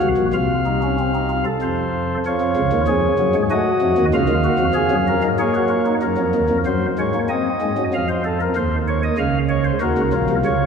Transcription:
Already playing: F#4
0.02 C2 C3
0.17 A#1 A#2
0.34 C2 C3 F4 F5
0.66 D#4
0.83 C#4
0.99 C4
1.15 D#4
1.30 F4
1.45 A4
1.62 F2 F3 C5
2.26 F2 F3 F4 C#5
2.41 F2 F3
2.57 C#2 C#3
2.73 D#2 D#3
2.88 F2 F3 G#4
3.19 F#2 F#3
3.35 G#2 G#3
3.50 A3 F#4 D#5
3.82 F2 F3
3.98 D#2 D#3
4.14 C#2 C#3 F4 F5
4.29 D#2 D#3
4.44 F#4
4.59 F2 F3
4.74 F2 F3 G#4
4.91 F#2 F#3
5.08 A#4
5.23 G#2 G#3
5.39 A#3 G#4 C#5
5.55 F#4
5.69 F4
5.86 D#4
6.02 F#2 F#3 A#4
6.18 F2 F3
6.35 D#2 D#3
6.50 F2 F3
6.66 F#2 F#3 C5
6.99 G#2 G#3 C#5
7.14 A#3
7.29 C4 D#5
7.62 G#2 G#3
7.78 F#2 F#3
7.94 F2 F3 F5
8.09 C5
8.25 A4
8.41 A#4
8.56 D#2 D#3 C5
8.88 C#5
9.03 D#5
9.18 C#2 C#3 F5
9.49 C#5
9.65 C5
9.81 D#2 D#3 F#4 A#4
9.98 C#2 C#3
10.13 A#1 A#2 F4
10.30 C2 C3
10.45 C#2 C#3 C#5

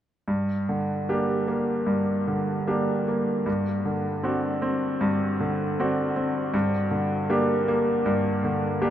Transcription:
0.28 G2
0.69 D3
1.09 A#3 D4 G4
1.48 A#3
1.86 G2
2.27 D3
2.67 A#3 D4 G4
3.08 A#3
3.46 G2
3.85 D3
4.23 C4 D4 F#4
4.62 C4
5.01 G2
5.40 D3
5.80 C4 D4 F#4
6.16 C4
6.54 G2
6.91 D3
7.30 A#3 D4 G4
7.68 A#3
8.06 G2
8.44 D3
8.82 A#3 D4 G4

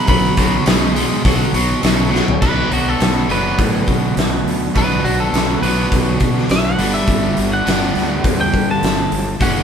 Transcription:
0.07 B1 B2 F#3 B5, kick, open hi-hat
0.37 B1 B2 F#3, kick, open hi-hat
0.66 B1 B2 G#3, snare, open hi-hat
0.95 B2 G#3, open hi-hat
1.24 B1 B2 F#3, kick, open hi-hat
1.53 B1 B2 F#3, open hi-hat
1.82 B1 B2 F#3, snare, open hi-hat
2.10 B2 F#3
2.15 snare
2.28 floor tom
2.41 B1 B2 F#3 B3 D4 B4, kick, crash
2.71 B1 F#4, open hi-hat
2.89 A4
3.00 B1, snare, open hi-hat
3.28 F#1 B2 F#3 B3 D4 B4, open hi-hat
3.59 A2, kick, open hi-hat
3.88 B2, kick, open hi-hat
4.16 B1, snare, open hi-hat
4.44 D2, open hi-hat
4.75 B1 B2 F#3 B3 D4 B4, kick, open hi-hat
5.03 B1 F#4, open hi-hat
5.20 A4
5.32 B1, snare, open hi-hat
5.62 B1 B2 F#3 B3 D4 B4, open hi-hat
5.92 B1, kick, open hi-hat
6.20 B2, kick, open hi-hat
6.38 snare
6.49 B1 E5, snare, open hi-hat
6.65 F#5
6.77 G1 G2 D3 G3 B3 D4, open hi-hat
6.94 E5
7.07 G1, kick, open hi-hat
7.37 G1, open hi-hat
7.53 F#5
7.65 G1 G2 D3 G3 B3 D4, snare, open hi-hat
7.95 D2, snare, open hi-hat
8.24 E2, kick, open hi-hat
8.41 G5
8.54 G2, kick, open hi-hat
8.71 A5
8.82 G1, snare, open hi-hat
9.11 G1, open hi-hat
9.40 F#1 F#2 C#3 F#3 A#3 C#4 F#5, kick, open hi-hat

